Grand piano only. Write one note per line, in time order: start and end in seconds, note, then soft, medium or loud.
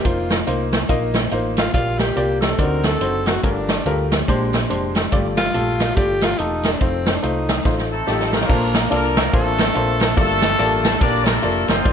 0.04 0.33 A#3 medium
0.04 0.33 D#4 medium
0.04 0.33 F4 medium
0.04 0.33 C5 medium
0.47 0.75 A#3 medium
0.47 0.75 D#4 medium
0.47 0.75 F4 medium
0.47 0.75 C5 medium
0.89 1.17 A#3 medium
0.89 1.17 D#4 medium
0.89 1.17 F4 medium
0.89 1.18 D#5 loud
1.31 1.59 A#3 medium
1.31 1.60 D#4 medium
1.31 1.60 F4 medium
1.31 1.60 C5 medium
1.74 2.38 A#2 soft
1.74 2.02 A#3 medium
1.74 2.02 F4 medium
1.74 2.02 G4 medium
1.74 2.02 D5 medium
2.16 2.44 A#3 medium
2.16 2.44 F4 medium
2.16 2.44 G4 medium
2.16 2.45 D5 medium
2.58 3.22 D3 medium
2.58 2.86 C4 medium
2.58 2.86 D#4 medium
2.58 2.87 F#4 medium
2.58 2.87 D5 medium
3.01 3.29 C4 medium
3.01 3.29 D#4 medium
3.01 3.29 F#4 medium
3.01 3.29 C5 medium
3.43 4.07 G2 medium
3.43 3.71 A3 medium
3.43 3.71 F4 medium
3.43 3.71 G4 medium
3.43 3.71 A#4 medium
3.86 4.14 A3 medium
3.86 4.14 F4 medium
3.86 4.14 G4 medium
3.86 4.14 A#4 medium
4.28 4.92 A#2 medium
4.28 4.56 G#3 medium
4.28 4.56 D4 medium
4.28 4.56 G4 medium
4.28 4.56 C5 loud
4.69 4.97 G#3 medium
4.69 4.98 D4 medium
4.69 4.98 G4 medium
4.69 4.98 C5 medium
5.12 5.76 G2 medium
5.12 5.40 A3 medium
5.12 5.40 F4 medium
5.12 5.40 G4 medium
5.12 5.40 D5 medium
5.54 5.82 A3 medium
5.54 5.82 F4 medium
5.54 5.82 G4 medium
5.54 5.82 A4 medium
5.97 6.24 A3 medium
5.97 6.25 F4 medium
5.97 6.25 G4 medium
5.97 6.25 D5 medium
6.39 6.67 A3 medium
6.39 6.67 F4 medium
6.39 6.67 G4 medium
6.39 6.67 A4 medium
6.81 7.09 A3 medium
6.81 7.09 D#4 medium
6.81 7.09 F4 medium
6.81 7.09 C5 medium
7.23 7.51 A3 medium
7.23 7.51 D#4 medium
7.23 7.51 F4 medium
7.23 7.51 C5 medium
7.65 7.93 A3 medium
7.65 7.93 D#4 medium
7.65 7.93 F4 medium
7.65 7.93 C5 medium
8.07 8.35 A3 medium
8.07 8.35 D#4 medium
8.07 8.35 F4 medium
8.07 8.35 G4 medium
8.49 9.13 A#2 medium
8.49 8.77 A#3 medium
8.49 8.77 D4 medium
8.49 8.77 F4 medium
8.49 8.77 A4 medium
8.49 8.77 C5 medium
8.90 9.19 A#3 medium
8.90 9.19 D4 medium
8.90 9.19 F4 medium
8.90 9.19 A4 medium
8.90 9.19 D5 medium
9.33 9.61 A#3 medium
9.33 9.61 D4 medium
9.33 9.61 F4 medium
9.33 9.61 A4 medium
9.33 9.61 C5 medium
9.75 10.03 A#3 medium
9.75 10.03 D4 medium
9.75 10.03 F4 medium
9.75 10.03 A4 medium
9.75 10.03 C5 medium
10.16 10.81 G2 medium
10.16 10.45 A#3 medium
10.16 10.45 F4 medium
10.16 10.45 G4 medium
10.16 10.45 A4 medium
10.16 10.45 D5 medium
10.58 10.87 A#3 medium
10.58 10.87 F4 medium
10.58 10.87 G4 medium
10.58 10.87 A4 medium
10.58 10.87 D5 medium
11.00 11.29 A#3 medium
11.00 11.29 F4 medium
11.00 11.29 G4 medium
11.00 11.29 A4 medium
11.00 11.29 D5 medium
11.42 11.71 A#3 medium
11.42 11.71 F4 medium
11.42 11.71 G4 medium
11.42 11.71 A4 medium
11.42 11.71 D5 medium
11.85 11.93 G2 medium
11.85 11.93 C4 medium
11.85 11.93 D#4 medium
11.85 11.93 F4 medium
11.85 11.93 A#4 medium
11.85 11.93 D5 medium